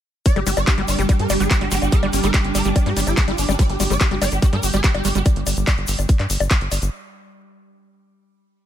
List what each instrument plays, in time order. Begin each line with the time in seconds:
0.26 ambient pad G3, analog synth pad D4, digital synth lead D5, kick, closed hi-hat, shaker
0.34 analog synth bass G1, acid bass G3, analog synth pad G4, digital synth lead G4, closed hi-hat, high bongo
0.47 analog synth bass G1, acid bass G3, digital synth lead G4, open hi-hat, shaker
0.57 analog synth bass G1, digital synth lead D5, closed hi-hat, high bongo, shaker
0.67 acid bass G3, digital synth lead G4, kick, clap, closed hi-hat, shaker
0.78 analog synth bass G1, acid bass G3, digital synth lead G4, analog synth pad G5, closed hi-hat
0.88 analog synth bass G1, digital synth lead D5, open hi-hat, high bongo, shaker
0.99 analog synth bass G1, acid bass G3, digital synth lead G4, closed hi-hat, shaker
1.09 acid bass G3, digital synth lead G4, kick, closed hi-hat, high bongo, shaker
1.19 analog synth bass G2, digital synth lead A#4, closed hi-hat
1.30 analog synth bass G1, acid bass G3, digital synth lead G4, open hi-hat, high bongo, shaker
1.40 analog synth bass G1, acid bass G3, digital synth lead G#4, closed hi-hat, shaker
1.51 digital synth lead G4, analog synth pad D6, kick, clap, closed hi-hat, shaker
1.61 analog synth bass G1, acid bass G3, digital synth lead G4, closed hi-hat, high bongo
1.71 analog synth bass G1, acid bass G3, digital synth lead G4, open hi-hat, shaker
1.82 analog synth bass G1, digital synth lead G4, closed hi-hat, high bongo, shaker
1.92 acid bass G3, digital synth lead A#4, kick, closed hi-hat, shaker
2.03 analog synth bass G1, acid bass G3, digital synth lead D4, closed hi-hat, high bongo
2.13 analog synth bass G1, digital synth lead D4, open hi-hat, shaker
2.23 analog synth bass G1, acid bass G3, digital synth lead A#4, closed hi-hat, shaker
2.34 acid bass G3, digital synth lead D4, kick, clap, closed hi-hat, high bongo, shaker
2.44 analog synth bass G1, digital synth lead D4, closed hi-hat
2.55 analog synth bass G1, acid bass G3, digital synth lead A#4, open hi-hat, high bongo, shaker
2.64 analog synth bass G1, acid bass G3, digital synth lead D4, closed hi-hat, shaker
2.76 digital synth lead D4, kick, closed hi-hat, high bongo, shaker
2.86 analog synth bass G2, acid bass G3, digital synth lead G4, closed hi-hat
2.97 analog synth bass G1, acid bass G3, digital synth lead D4, open hi-hat, shaker
3.07 analog synth bass G1, digital synth lead F4, closed hi-hat, high bongo, shaker
3.17 acid bass G3, digital synth lead D4, kick, clap, closed hi-hat, shaker
3.28 analog synth bass G1, acid bass G3, digital synth lead F4, closed hi-hat, high bongo
3.38 analog synth bass G1, digital synth lead D4, open hi-hat, shaker
3.49 analog synth bass G1, acid bass G3, digital synth lead D4, closed hi-hat, high bongo, shaker
3.59 acid bass G3, digital synth lead D5, kick, closed hi-hat, shaker
3.69 analog synth bass G1, digital synth lead G4, closed hi-hat
3.80 analog synth bass G1, acid bass G3, digital synth lead G4, open hi-hat, high bongo, shaker
3.90 analog synth bass G1, acid bass G3, digital synth lead D5, closed hi-hat, shaker
4.00 digital synth lead G4, kick, clap, closed hi-hat, high bongo, shaker
4.11 analog synth bass G1, acid bass G3, digital synth lead G4, closed hi-hat
4.22 analog synth bass G1, acid bass G3, digital synth lead D5, open hi-hat, high bongo, shaker
4.32 analog synth bass G1, digital synth lead G4, closed hi-hat, shaker
4.42 acid bass G3, digital synth lead G4, kick, closed hi-hat, shaker
4.53 analog synth bass G2, acid bass G3, digital synth lead A#4, closed hi-hat, high bongo
4.63 analog synth bass G1, digital synth lead G4, open hi-hat, shaker
4.73 analog synth bass G1, acid bass G3, digital synth lead G#4, closed hi-hat, high bongo, shaker
4.84 acid bass G3, digital synth lead G4, kick, clap, closed hi-hat, shaker
4.94 analog synth bass G1, digital synth lead G4, closed hi-hat, high bongo
5.05 analog synth bass G1, acid bass G3, digital synth lead G4, open hi-hat, shaker
5.15 analog synth bass G1, acid bass G3, digital synth lead G4, closed hi-hat, shaker
5.26 kick, closed hi-hat, high bongo, shaker
5.36 analog synth bass G1, closed hi-hat
5.47 analog synth bass G1, open hi-hat, high bongo, shaker
5.57 analog synth bass G1, closed hi-hat, shaker
5.67 kick, clap, closed hi-hat, high bongo, shaker
5.78 analog synth bass G1, closed hi-hat
5.87 analog synth bass G1, open hi-hat, shaker
5.99 analog synth bass G1, closed hi-hat, high bongo, shaker
6.09 kick, closed hi-hat, shaker
6.19 analog synth bass G2, clap, closed hi-hat, high bongo
6.30 analog synth bass G1, open hi-hat, shaker
6.40 analog synth bass G1, closed hi-hat, high bongo, shaker
6.51 kick, clap, closed hi-hat, shaker
6.61 analog synth bass G1, closed hi-hat
6.72 analog synth bass G1, open hi-hat, high bongo, shaker
6.82 analog synth bass G1, closed hi-hat, shaker